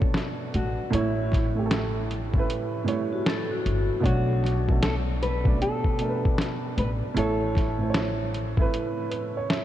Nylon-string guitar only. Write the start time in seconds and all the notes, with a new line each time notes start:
Already playing: A4
0.55 F#4
0.96 E4
4.05 F#4
4.84 A4
5.23 B4
5.62 A4
6.79 B4
7.17 A4